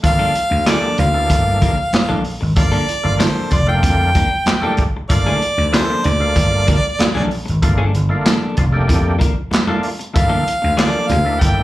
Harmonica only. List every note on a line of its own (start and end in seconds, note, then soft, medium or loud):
0.05 0.64 F5 loud
0.68 0.97 D5 loud
0.99 2.22 F5 loud
2.58 3.23 D5 medium
3.21 3.54 C5 medium
3.53 3.68 D5 medium
3.68 4.75 G5 loud
5.09 5.76 D5 loud
5.74 6.07 C5 loud
6.05 7.31 D5 loud
10.15 10.79 F5 loud
10.78 11.09 D5 loud
11.08 11.41 F5 loud
11.40 11.63 G5 medium